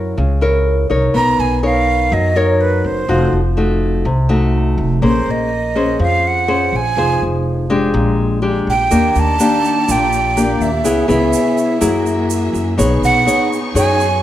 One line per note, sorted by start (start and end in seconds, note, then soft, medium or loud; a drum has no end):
0.00 0.13 F#2 medium
0.00 0.15 F#3 medium
0.00 0.17 E4 medium
0.00 0.17 A#4 soft
0.00 0.18 C#5 medium
0.17 0.86 C#2 loud
0.17 1.12 C#3 medium
0.41 0.86 E4 medium
0.41 0.86 A#4 medium
0.41 0.86 C#5 medium
0.90 1.13 C2 medium
0.90 1.59 D#4 medium
0.90 1.59 A#4 soft
0.90 1.59 C#5 medium
1.14 1.37 B1 medium
1.14 2.09 B3 medium
1.14 1.41 A#5 loud
1.39 2.07 B1 medium
1.39 1.63 G#5 medium
1.63 2.32 D#4 medium
1.63 2.32 A#4 medium
1.63 2.32 C#5 medium
1.63 2.15 F5 medium
2.12 2.80 F#2 loud
2.12 3.06 F#3 medium
2.12 2.38 D#5 medium
2.36 3.05 D#4 medium
2.36 3.05 A#4 medium
2.36 2.62 C#5 medium
2.36 3.05 C#5 medium
2.61 2.88 B4 medium
2.84 3.07 F#1 medium
2.84 3.34 C5 medium
3.08 3.31 F1 medium
3.08 4.03 F3 medium
3.08 3.40 A3 medium
3.08 3.40 D#4 medium
3.08 3.40 F#4 medium
3.33 4.01 F1 medium
3.57 4.05 A3 medium
3.57 4.05 D#4 soft
3.57 4.05 F#4 medium
4.05 4.74 C2 medium
4.05 5.00 C3 medium
4.29 4.98 A3 medium
4.29 4.98 D#4 medium
4.29 4.99 F#4 medium
4.78 5.00 F1 medium
5.02 5.25 A#1 medium
5.02 5.97 A#3 medium
5.02 5.51 C#4 medium
5.02 5.51 G#4 medium
5.02 5.51 C5 medium
5.06 5.32 C5 medium
5.27 5.96 A#1 medium
5.27 6.02 D#5 medium
5.75 6.44 C#4 medium
5.75 6.45 G#4 medium
5.75 6.45 C5 medium
5.99 6.68 F2 medium
5.99 6.94 F3 medium
5.99 6.29 F5 medium
6.27 6.78 F#5 medium
6.48 6.79 C#4 medium
6.48 6.79 G#4 soft
6.48 6.80 C5 medium
6.72 6.95 A#1 medium
6.72 7.23 G#5 loud
6.97 7.19 F1 medium
6.97 7.92 F3 medium
6.97 7.66 D#4 medium
6.97 7.66 G#4 medium
6.97 7.66 C5 medium
7.21 7.90 F1 medium
7.70 8.39 G#3 medium
7.70 8.39 D4 medium
7.70 8.39 G4 medium
7.94 8.63 A#1 loud
7.94 8.88 A#2 medium
8.42 8.73 G#3 medium
8.42 8.73 D4 medium
8.42 8.74 G4 medium
8.67 8.89 A#1 medium
8.67 9.21 G5 loud
8.91 9.14 D#2 medium
8.91 9.85 D#3 medium
8.91 9.36 A#3 medium
8.91 10.83 A#3 medium
8.91 9.36 D4 medium
8.91 10.83 G4 medium
8.91 9.36 G4 medium
8.91 10.83 D5 medium
8.91 shaker medium
9.15 9.38 D#2 medium
9.15 9.93 A5 loud
9.15 shaker soft
9.40 10.05 A#3 medium
9.40 10.05 D4 medium
9.40 10.05 G4 medium
9.40 shaker medium
9.65 shaker soft
9.88 10.57 A#1 medium
9.88 10.82 A#2 medium
9.88 10.63 G5 medium
9.88 shaker medium
10.13 shaker soft
10.37 10.69 A#3 medium
10.37 10.69 D4 medium
10.37 10.69 G4 medium
10.37 shaker medium
10.60 10.85 D#2 medium
10.60 11.09 E5 medium
10.60 shaker soft
10.84 11.07 C#2 medium
10.84 11.79 C#3 medium
10.84 11.80 B3 medium
10.84 11.05 B3 medium
10.84 11.80 E4 medium
10.84 11.05 E4 medium
10.84 11.80 G#4 medium
10.84 11.05 G#4 medium
10.84 11.80 C#5 medium
10.84 shaker medium
11.08 11.31 C#2 medium
11.08 11.77 B3 medium
11.08 11.77 E4 medium
11.08 11.78 G#4 medium
11.08 12.02 E5 medium
11.08 shaker soft
11.33 shaker medium
11.58 shaker soft
11.81 12.50 F#2 loud
11.81 12.76 F#3 medium
11.81 12.74 A#3 medium
11.81 12.78 A#3 medium
11.81 12.74 E4 medium
11.81 12.78 F#4 medium
11.81 12.74 G#4 medium
11.81 12.78 G#4 medium
11.81 12.78 E5 medium
11.81 shaker medium
12.06 shaker soft
12.30 shaker medium
12.53 12.80 F#2 medium
12.53 shaker soft
12.78 13.01 B1 loud
12.78 13.72 B3 medium
12.78 14.23 B3 medium
12.78 13.22 D#4 medium
12.78 14.23 D#4 medium
12.78 13.23 G#4 medium
12.78 14.23 G#4 medium
12.78 13.23 C#5 medium
12.78 14.23 C#6 medium
12.78 shaker medium
13.02 13.25 B1 medium
13.02 13.49 F#5 loud
13.02 shaker soft
13.26 13.58 D#4 medium
13.26 13.58 G#4 soft
13.26 13.58 C#5 medium
13.26 shaker medium
13.53 shaker soft
13.75 14.23 F#2 medium
13.75 14.23 F#3 medium
13.75 14.06 D#4 medium
13.75 14.07 G#4 medium
13.75 14.07 C#5 medium
13.75 14.21 G#5 loud
13.75 shaker medium
14.00 shaker soft